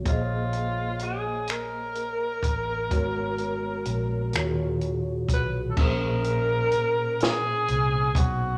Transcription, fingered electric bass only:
\new Staff \with { instrumentName = "Fingered electric bass" } { \clef bass \time 6/8 \key bes \minor \tempo 4. = 42 bes,,2~ bes,,8 a,,8 | aes,,4 bes,,8 ees,4 ces,8 | bes,,4 r4 c,8 ces,8 | }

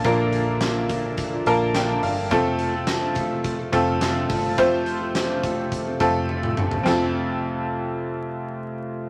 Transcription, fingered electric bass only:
\new Staff \with { instrumentName = "Fingered electric bass" } { \clef bass \time 4/4 \key f \major \tempo 4 = 106 bes,,2~ bes,,8 bes,,4 g,,8 | f,,2~ f,,8 f,,4 g,,8 | f,,2~ f,,8 f,,4 g,,8 | f,,1 | }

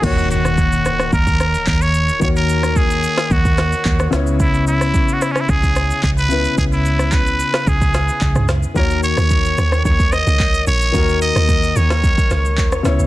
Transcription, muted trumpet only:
\new Staff \with { instrumentName = "Muted trumpet" } { \time 4/4 \key dis \phrygian \tempo 4 = 110 fis'8 fis'4. ais'4 ais'16 cis''8. | cis''16 ais'8. gis'4 fis'4. r8 | e'8 e'8~ \tuplet 3/2 { e'8 fis'16 e'16 cis'16 e'16 } gis'4 gis'16 b'8. | gis'16 e'8. b'4 gis'4. r8 |
ais'8 cis''4. cis''8 dis''4 cis''8~ | cis''8 dis''4 cis''2 r8 | }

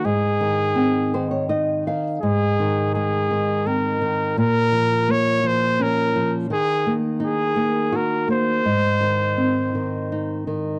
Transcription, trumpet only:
\new Staff \with { instrumentName = "Trumpet" } { \time 3/4 \key aes \mixolydian \tempo 4 = 84 aes'2 r4 | aes'4 aes'4 bes'4 | bes'4 des''8 c''8 bes'8. r16 | aes'8 r8 aes'4 bes'8 c''8~ |
c''2~ c''8 r8 | }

